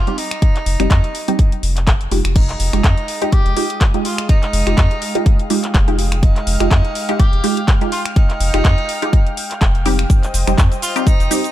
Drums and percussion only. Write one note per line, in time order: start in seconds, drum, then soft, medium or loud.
0.07 closed hi-hat soft
0.18 open hi-hat medium
0.31 finger snap medium
0.31 closed hi-hat medium
0.42 kick loud
0.42 closed hi-hat medium
0.56 clap soft
0.56 closed hi-hat soft
0.66 open hi-hat loud
0.80 finger snap medium
0.80 closed hi-hat medium
0.91 kick loud
0.91 clap loud
0.91 closed hi-hat medium
1.04 closed hi-hat soft
1.15 open hi-hat medium
1.28 closed hi-hat medium
1.39 kick loud
1.39 closed hi-hat medium
1.52 closed hi-hat soft
1.63 open hi-hat loud
1.77 clap soft
1.77 closed hi-hat medium
1.87 kick loud
1.87 clap loud
1.87 closed hi-hat medium
2.01 closed hi-hat soft
2.11 open hi-hat medium
2.25 finger snap medium
2.25 closed hi-hat medium
2.36 kick loud
2.36 closed hi-hat medium
2.36 crash medium
2.49 clap soft
2.49 closed hi-hat soft
2.60 open hi-hat loud
2.73 finger snap medium
2.73 closed hi-hat medium
2.84 kick loud
2.84 clap loud
2.84 closed hi-hat medium
2.98 closed hi-hat soft
3.08 open hi-hat medium
3.22 closed hi-hat medium
3.32 kick loud
3.32 closed hi-hat medium
3.46 closed hi-hat soft
3.57 open hi-hat loud
3.70 closed hi-hat medium
3.81 kick loud
3.81 clap loud
3.81 closed hi-hat medium
3.94 closed hi-hat soft
4.05 open hi-hat medium
4.18 finger snap medium
4.18 closed hi-hat medium
4.29 kick loud
4.29 closed hi-hat medium
4.43 clap soft
4.43 closed hi-hat soft
4.53 open hi-hat loud
4.67 finger snap medium
4.67 closed hi-hat soft
4.78 kick loud
4.78 clap loud
4.78 closed hi-hat medium
4.91 closed hi-hat soft
5.02 open hi-hat loud
5.15 closed hi-hat medium
5.26 kick loud
5.26 closed hi-hat medium
5.39 closed hi-hat soft
5.50 open hi-hat loud
5.64 clap soft
5.64 closed hi-hat medium
5.74 kick loud
5.74 clap loud
5.74 closed hi-hat medium
5.88 closed hi-hat soft
5.99 open hi-hat loud
6.12 finger snap medium
6.12 closed hi-hat medium
6.23 kick loud
6.23 closed hi-hat medium
6.36 clap soft
6.36 closed hi-hat soft
6.47 open hi-hat loud
6.60 finger snap medium
6.60 closed hi-hat soft
6.71 kick loud
6.71 clap loud
6.71 closed hi-hat medium
6.85 closed hi-hat soft
6.95 open hi-hat medium
7.09 closed hi-hat soft
7.20 kick loud
7.20 closed hi-hat medium
7.33 closed hi-hat soft
7.44 open hi-hat loud
7.57 closed hi-hat soft
7.68 kick loud
7.68 clap loud
7.68 closed hi-hat medium
7.81 closed hi-hat soft
7.92 open hi-hat loud
8.06 finger snap medium
8.06 closed hi-hat medium
8.16 kick loud
8.16 closed hi-hat medium
8.30 clap soft
8.30 closed hi-hat soft
8.40 open hi-hat loud
8.54 finger snap medium
8.54 closed hi-hat soft
8.65 kick loud
8.65 clap loud
8.65 closed hi-hat medium
8.78 closed hi-hat soft
8.89 open hi-hat medium
9.02 closed hi-hat soft
9.13 kick loud
9.13 closed hi-hat medium
9.27 closed hi-hat soft
9.37 open hi-hat loud
9.51 clap soft
9.51 closed hi-hat soft
9.61 kick loud
9.61 clap loud
9.61 closed hi-hat medium
9.75 closed hi-hat soft
9.86 open hi-hat loud
9.99 finger snap medium
9.99 closed hi-hat medium
10.10 kick loud
10.10 closed hi-hat medium
10.10 shaker soft
10.23 clap soft
10.23 closed hi-hat soft
10.23 shaker soft
10.34 open hi-hat loud
10.34 shaker medium
10.47 finger snap medium
10.47 closed hi-hat soft
10.47 shaker soft
10.58 kick loud
10.58 clap loud
10.58 closed hi-hat medium
10.58 shaker soft
10.72 closed hi-hat soft
10.72 shaker soft
10.82 open hi-hat medium
10.82 shaker medium
10.96 closed hi-hat soft
10.96 shaker soft
11.07 kick loud
11.07 closed hi-hat medium
11.07 shaker soft
11.20 closed hi-hat soft
11.20 shaker soft
11.31 open hi-hat loud
11.31 shaker medium
11.44 closed hi-hat soft
11.44 shaker soft